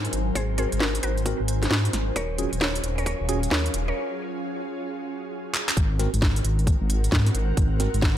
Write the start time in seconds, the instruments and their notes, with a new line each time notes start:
Already playing: ambient pad F#3 C4 D#4 F#4 A#4 C5 G#5
0.05 closed hi-hat
0.13 detuned saw bass G#1, closed hi-hat
0.35 detuned saw bass G#1, synth pluck G#4 C5, ambient pad C5, kick, closed hi-hat
0.58 tine electric piano C4 F#4 A#4, synth pluck G#4 C5, closed hi-hat
0.72 detuned saw bass G#1, closed hi-hat
0.80 synth pluck F#4 A#4, kick, snare
0.95 closed hi-hat
1.03 detuned saw bass G#1, synth pluck F#4 A#4, closed hi-hat
1.18 closed hi-hat
1.26 tine electric piano C4 F#4 A#4, kick, closed hi-hat
1.40 detuned saw bass G#1
1.48 closed hi-hat
1.63 snare, closed hi-hat
1.71 detuned saw bass G#2, kick, snare
1.85 closed hi-hat
1.93 detuned saw bass G#1, snare, closed hi-hat
2.16 detuned saw bass D#1, ambient pad C#4 F4 G#4, synth pluck A#4 C#5, kick, closed hi-hat
2.37 tine electric piano C#4 F4 F#4 G#4, ambient pad C#5 F5, closed hi-hat
2.53 detuned saw bass D#1, closed hi-hat
2.61 synth pluck A#4 C#5, kick, snare
2.75 closed hi-hat
2.84 detuned saw bass D#1, closed hi-hat
2.98 synth pluck A#4 C#5, closed hi-hat
3.06 synth pluck A#4 C#5, kick, closed hi-hat
3.21 detuned saw bass D#1
3.29 tine electric piano C#4 F4 F#4 G#4, closed hi-hat
3.43 closed hi-hat
3.51 detuned saw bass D#2, synth pluck A#4 C#5, kick, snare
3.66 closed hi-hat
3.74 detuned saw bass D#1, closed hi-hat
3.88 synth pluck A#4 C#5
5.54 clap
5.69 clap
5.77 detuned saw bass G#1, ambient pad C4 D#4 F#4 A#4, kick, closed hi-hat
5.91 ambient pad A#4
5.99 tine electric piano C4 F#4 A#4, snare, closed hi-hat
6.14 detuned saw bass G#1, closed hi-hat
6.22 kick, snare
6.36 ambient pad F#5, closed hi-hat
6.44 detuned saw bass G#1, closed hi-hat
6.59 closed hi-hat
6.67 kick, closed hi-hat
6.81 detuned saw bass G#1
6.90 closed hi-hat
7.04 closed hi-hat
7.12 detuned saw bass G#2, kick, snare
7.26 snare, closed hi-hat
7.35 detuned saw bass G#1, closed hi-hat
7.57 detuned saw bass G#1, ambient pad C5, kick, closed hi-hat
7.80 tine electric piano C4 F#4 A#4, snare, closed hi-hat
7.94 detuned saw bass G#1, closed hi-hat
8.02 kick, snare